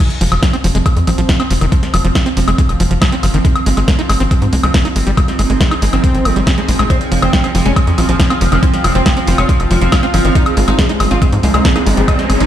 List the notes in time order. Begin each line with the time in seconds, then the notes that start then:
Already playing: D#4 G#4 G#5
0.00 F3 C4
0.10 closed hi-hat
0.21 F1 F3, open hi-hat
0.32 F1 F3, closed hi-hat, high woodblock
0.43 G3 F4, kick, snare, closed hi-hat
0.53 C4, closed hi-hat, high woodblock
0.64 F1 F3, open hi-hat
0.75 F1 G#3, closed hi-hat
0.86 G#3, kick, closed hi-hat, high woodblock
0.97 F2, closed hi-hat
1.07 A#1 F3, open hi-hat, high woodblock
1.18 A#1 F3, closed hi-hat
1.29 G3, kick, snare, closed hi-hat
1.37 C4 F5, closed hi-hat, high woodblock
1.50 F1 F3, open hi-hat
1.61 F1 D#3, closed hi-hat, high woodblock
1.72 F3, kick, closed hi-hat
1.83 snare, closed hi-hat
1.94 F1 F3, open hi-hat, high woodblock
2.04 F1 F3, closed hi-hat
2.15 G3, kick, snare, closed hi-hat, high woodblock
2.26 C4, closed hi-hat
2.37 F1 F3, open hi-hat
2.48 F1 G#3, closed hi-hat, high woodblock
2.58 G#3, kick, closed hi-hat
2.69 F1, closed hi-hat, high woodblock
2.80 F1 F3, open hi-hat
2.91 F1 F3, closed hi-hat
3.02 G3, kick, snare, closed hi-hat, high woodblock
3.12 C4, closed hi-hat
3.23 G1 F3, open hi-hat, high woodblock
3.34 G1 D#3, closed hi-hat
3.45 G#3 D#4, kick, closed hi-hat
3.56 closed hi-hat, high woodblock
3.66 G#1 G#3, open hi-hat
3.77 G#1 G#3 G#4, closed hi-hat, high woodblock
3.88 A#3, kick, snare, closed hi-hat
3.99 D#4, closed hi-hat
4.09 G#1 G#3, open hi-hat, high woodblock
4.20 G#1 C4, closed hi-hat
4.31 C4, kick, closed hi-hat, high woodblock
4.42 G#2, closed hi-hat
4.53 C2 G#3, open hi-hat
4.63 C2 G#3, closed hi-hat, high woodblock
4.74 A#3, kick, snare, closed hi-hat
4.85 D#4, closed hi-hat, high woodblock
4.96 G#1 G#3 G#5, open hi-hat
5.07 G#1 G3, closed hi-hat
5.17 G#3, kick, closed hi-hat, high woodblock
5.28 snare, closed hi-hat
5.39 G#1 G#3, open hi-hat, high woodblock
5.50 G#1 G#3, closed hi-hat
5.61 A#3, kick, snare, closed hi-hat
5.71 D#4, closed hi-hat, high woodblock
5.82 G#1 G#3, open hi-hat
5.93 G#1 C4, closed hi-hat, high woodblock
6.04 C4, kick, closed hi-hat
6.15 G#1, closed hi-hat
6.25 G#1 G#3, open hi-hat, high woodblock
6.36 G#1 G3, closed hi-hat
6.47 C4, kick, snare, closed hi-hat, high woodblock
6.58 G#3, closed hi-hat
6.68 A#1 G#3, open hi-hat
6.79 A#1 G#3, closed hi-hat, high woodblock
6.90 F3 C4, kick, closed hi-hat, high woodblock
7.01 F3, closed hi-hat
7.12 F1 F3, open hi-hat
7.22 F1 F3 C4 F4, closed hi-hat, high woodblock
7.33 F3 G3, kick, snare, closed hi-hat
7.44 F3 C4, closed hi-hat, high woodblock
7.55 F1 F3, open hi-hat
7.66 F1 G#3 C#4, closed hi-hat
7.76 F3 G#3, kick, closed hi-hat, high woodblock
7.87 F2, closed hi-hat
7.98 A#1 F3, open hi-hat, high woodblock
8.09 A#1 F3 F5, closed hi-hat
8.20 F3 G3, kick, snare, closed hi-hat
8.30 C4 F4, closed hi-hat, high woodblock
8.41 F1 F3, open hi-hat
8.52 F1 D#3 F3, closed hi-hat, high woodblock
8.63 F3 C4, kick, closed hi-hat
8.74 F3, snare, closed hi-hat
8.84 F1 F3, open hi-hat, high woodblock
8.95 F1 F3 C4, closed hi-hat
9.06 F3 G3, kick, snare, closed hi-hat, high woodblock
9.17 F3 C4, closed hi-hat
9.27 F1 F3, open hi-hat
9.38 F1 G#3 C#4, closed hi-hat, high woodblock
9.49 F3 G#3, kick, closed hi-hat
9.60 F1, closed hi-hat, high woodblock
9.71 F1 F3, open hi-hat
9.81 F1 F3, closed hi-hat
9.92 F3 G3, kick, snare, closed hi-hat, high woodblock
10.03 C4 F4, closed hi-hat
10.14 G1 F3, open hi-hat, high woodblock
10.25 G1 D#3 F3, closed hi-hat
10.35 G#3 D#4, kick, closed hi-hat, riser
10.46 G#3, closed hi-hat, high woodblock
10.57 G#1 G#3, open hi-hat
10.62 G#4
10.68 G#1 G#3 D#4, closed hi-hat, high woodblock
10.79 G#3 A#3, kick, snare, closed hi-hat
10.89 G#3 D#4, closed hi-hat
11.00 G#1 G#3, open hi-hat, high woodblock
11.11 G#1 C4 F4, closed hi-hat
11.22 G#3 C4, kick, closed hi-hat, high woodblock
11.32 G#2, closed hi-hat
11.41 C2 G#3 G#5, open hi-hat
11.54 C2 G#3, closed hi-hat, high woodblock
11.65 G#3 A#3, kick, snare, closed hi-hat
11.76 D#4 G#4, closed hi-hat, high woodblock
11.86 G#1 G#3, open hi-hat
11.97 G#1 G3 G#3, closed hi-hat
12.08 G#3 D#4, kick, closed hi-hat, high woodblock
12.19 G#3, snare, closed hi-hat
12.30 G#1 G#3, open hi-hat, high woodblock
12.40 G#1 G#3 D#4, closed hi-hat